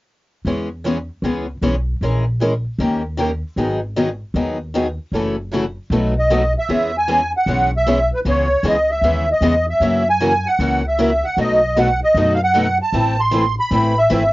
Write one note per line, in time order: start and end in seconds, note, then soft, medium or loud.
0.45 1.08 E2 medium
0.45 0.67 E3 soft
0.45 0.68 G#3 medium
0.45 0.68 B3 soft
0.45 0.68 C#4 soft
0.45 0.68 G#4 soft
0.45 0.68 C#5 soft
0.84 0.96 E3 medium
0.84 0.96 G#3 medium
0.84 0.97 B3 medium
0.84 0.96 C#4 medium
0.84 0.96 G#4 medium
0.84 0.97 C#5 medium
1.22 1.56 C#2 medium
1.22 1.45 E3 medium
1.22 1.45 G#3 medium
1.22 1.46 B3 medium
1.22 1.45 C#4 soft
1.22 1.45 G#4 soft
1.22 1.46 C#5 medium
1.61 1.95 B1 soft
1.61 1.74 E3 medium
1.61 1.74 G#3 medium
1.61 1.74 B3 medium
1.61 1.74 C#4 medium
1.61 1.74 G#4 medium
1.61 1.75 C#5 medium
2.01 2.63 A#1 medium
2.01 2.23 E3 soft
2.01 2.23 G#3 soft
2.01 2.24 C#4 soft
2.01 2.24 G#4 soft
2.01 2.24 A#4 medium
2.40 2.52 E3 medium
2.40 2.52 G#3 medium
2.40 2.52 C#4 medium
2.40 2.52 G#4 medium
2.40 2.52 A#4 medium
2.78 3.41 D#2 medium
2.78 3.01 D#3 soft
2.78 3.01 A#3 medium
2.78 3.02 C#4 medium
2.78 3.02 G4 medium
2.78 3.02 A#4 medium
3.19 3.30 D#3 medium
3.19 3.30 A#3 medium
3.19 3.30 C#4 medium
3.19 3.31 G4 medium
3.19 3.31 A#4 medium
3.56 4.19 G#1 medium
3.56 3.79 D#3 soft
3.56 3.79 F#3 medium
3.56 3.79 B3 medium
3.56 3.79 D#4 medium
3.56 3.79 G#4 medium
3.97 4.08 D#3 medium
3.97 4.08 F#3 medium
3.97 4.08 B3 medium
3.97 4.08 D#4 medium
3.97 4.08 G#4 medium
4.34 4.97 D#2 medium
4.34 4.57 D#3 soft
4.34 4.57 F#3 soft
4.34 4.57 B3 medium
4.34 4.57 D#4 medium
4.34 4.57 G#4 medium
4.75 4.86 D#3 medium
4.75 4.86 F#3 medium
4.75 4.86 B3 medium
4.75 4.86 D#4 medium
4.75 4.87 G#4 medium
5.12 5.75 F#1 medium
5.12 5.35 C#3 soft
5.12 5.35 E3 medium
5.12 5.34 F#3 soft
5.12 5.35 A3 medium
5.12 5.35 C#4 soft
5.12 5.35 E4 soft
5.12 5.35 A4 medium
5.16 5.36 F#4 medium
5.52 5.64 C#3 medium
5.52 5.64 E3 medium
5.52 5.63 F#3 medium
5.52 5.64 A3 medium
5.52 5.64 C#4 medium
5.52 5.64 E4 medium
5.52 5.65 F#4 medium
5.52 5.64 A4 medium
5.90 6.53 B1 medium
5.90 6.13 B2 soft
5.90 6.13 F#3 medium
5.90 6.13 A3 medium
5.90 6.13 D#4 medium
5.90 6.13 F#4 medium
5.90 6.13 B4 medium
6.19 6.53 D#5 medium
6.31 6.42 B2 medium
6.31 6.42 F#3 medium
6.31 6.42 A3 medium
6.31 6.42 D#4 medium
6.31 6.42 F#4 medium
6.31 6.42 B4 medium
6.58 6.96 E5 medium
6.68 7.31 E2 medium
6.68 6.90 E3 soft
6.68 6.90 G#3 medium
6.68 6.91 B3 medium
6.68 6.90 C#4 medium
6.68 6.91 G#4 medium
6.68 6.91 C#5 medium
6.98 7.32 G#5 medium
7.08 7.19 E3 medium
7.08 7.19 G#3 medium
7.08 7.19 B3 medium
7.08 7.20 C#4 medium
7.08 7.20 G#4 medium
7.08 7.20 C#5 medium
7.37 7.71 F#5 medium
7.46 8.09 B1 medium
7.46 7.69 E3 medium
7.46 7.69 G#3 medium
7.46 7.68 B3 medium
7.46 7.69 C#4 medium
7.46 7.69 G#4 medium
7.46 7.70 C#5 medium
7.77 8.10 E5 medium
7.86 7.98 E3 medium
7.86 7.98 G#3 medium
7.86 7.97 B3 medium
7.86 7.98 C#4 medium
7.86 7.98 G#4 medium
7.86 7.98 C#5 medium
8.14 8.20 B4 medium
8.25 8.56 C#2 medium
8.25 8.47 C#3 medium
8.25 8.47 E3 medium
8.25 8.47 G#3 medium
8.25 8.47 B3 medium
8.25 8.47 C#4 medium
8.25 8.48 E4 medium
8.25 8.48 G#4 medium
8.29 8.67 C#5 medium
8.63 8.96 C#2 medium
8.63 8.76 C#3 medium
8.63 8.75 E3 medium
8.63 8.76 G#3 medium
8.63 8.76 B3 medium
8.63 8.76 C#4 medium
8.63 8.76 E4 medium
8.63 8.76 G#4 medium
8.68 8.91 D#5 medium
8.91 9.29 E5 medium
9.01 9.35 D#2 medium
9.01 9.25 C#3 medium
9.01 9.25 E3 medium
9.01 9.25 G#3 medium
9.01 9.25 B3 medium
9.01 9.25 C#4 medium
9.01 9.25 E4 medium
9.01 9.25 G#4 medium
9.32 9.66 D#5 medium
9.41 9.74 E2 medium
9.41 9.53 C#3 medium
9.41 9.53 E3 medium
9.41 9.54 G#3 medium
9.41 9.54 B3 medium
9.41 9.53 C#4 medium
9.41 9.54 E4 medium
9.41 9.54 G#4 medium
9.70 10.08 E5 medium
9.80 10.43 F#2 medium
9.80 10.03 C#3 medium
9.80 10.03 E3 medium
9.80 10.02 F#3 medium
9.80 10.03 A#3 medium
9.80 10.02 C#4 medium
9.80 10.03 E4 medium
9.80 10.03 F#4 medium
9.80 10.03 A#4 medium
10.10 10.48 G#5 medium
10.20 10.31 C#3 medium
10.20 10.31 E3 medium
10.20 10.31 F#3 medium
10.20 10.32 A#3 medium
10.20 10.32 C#4 medium
10.20 10.32 E4 medium
10.20 10.32 F#4 medium
10.20 10.32 A#4 medium
10.47 10.85 F#5 medium
10.59 11.21 C#2 medium
10.59 10.81 C#3 medium
10.59 10.81 E3 medium
10.59 10.81 F#3 medium
10.59 10.81 A#3 medium
10.59 10.82 C#4 medium
10.59 10.82 E4 medium
10.59 10.81 F#4 medium
10.59 10.82 A#4 medium
10.88 11.26 E5 medium
10.99 11.10 C#3 medium
10.99 11.09 E3 medium
10.99 11.10 F#3 medium
10.99 11.10 A#3 medium
10.99 11.10 C#4 medium
10.99 11.10 E4 medium
10.99 11.10 F#4 medium
10.99 11.10 A#4 medium
11.25 11.39 F#5 medium
11.37 11.99 B1 medium
11.37 11.59 B2 soft
11.37 11.59 F#3 soft
11.37 11.59 A3 medium
11.37 11.59 D#4 medium
11.37 11.59 F#4 medium
11.37 11.60 B4 medium
11.37 11.79 D#5 medium
11.77 11.88 B2 medium
11.77 11.88 F#3 medium
11.77 11.88 A3 medium
11.77 11.88 D#4 medium
11.77 11.88 F#4 medium
11.77 11.88 B4 medium
11.77 12.00 F#5 medium
12.04 12.33 D#5 medium
12.14 12.77 F#2 medium
12.14 12.37 B2 soft
12.14 12.37 F#3 medium
12.14 12.37 A3 medium
12.14 12.37 D#4 medium
12.14 12.38 F#4 medium
12.14 12.38 B4 medium
12.34 12.41 F5 medium
12.44 12.78 F#5 medium
12.56 12.66 B2 medium
12.56 12.66 F#3 medium
12.56 12.66 A3 medium
12.56 12.67 D#4 medium
12.56 12.67 F#4 medium
12.56 12.67 B4 medium
12.82 13.20 A5 medium
12.93 13.55 A1 medium
12.93 13.15 E3 medium
12.93 13.15 A3 medium
12.93 13.15 C4 medium
12.93 13.15 E4 medium
12.93 13.16 B4 medium
13.20 13.55 C6 medium
13.33 13.44 E3 medium
13.33 13.44 A3 medium
13.33 13.44 C4 medium
13.33 13.45 E4 medium
13.33 13.45 B4 medium
13.60 13.98 B5 medium
13.71 14.04 A1 medium
13.71 13.93 E3 medium
13.71 13.94 A3 medium
13.71 13.94 C4 medium
13.71 13.94 E4 medium
13.71 13.94 B4 medium
13.98 14.33 E5 medium
14.10 14.33 G#1 medium
14.10 14.22 E3 medium
14.10 14.22 A3 medium
14.10 14.22 C4 medium
14.10 14.22 E4 medium
14.10 14.22 B4 medium